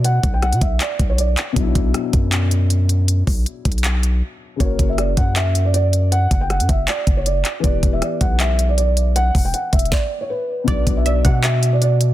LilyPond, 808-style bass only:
\new Staff \with { instrumentName = "808-style bass" } { \clef bass \time 4/4 \key b \minor \tempo 4 = 158 b,8 b,,8. b,16 b,,8 r8 b,,4 r8 | b,,8 b,,8 r8 fis,2~ fis,8~ | fis,8 b,,8 r8 b,,4. r4 | fis,,8 fis,,4 fis,2~ fis,8~ |
fis,8 fis,,8. fis,16 fis,,8 r8 fis,,4 r8 | e,,8 e,,8 r8 b,,2~ b,,8~ | b,,8 e,,8 r8 e,,8 r2 | b,,8 b,,4 b,2~ b,8 | }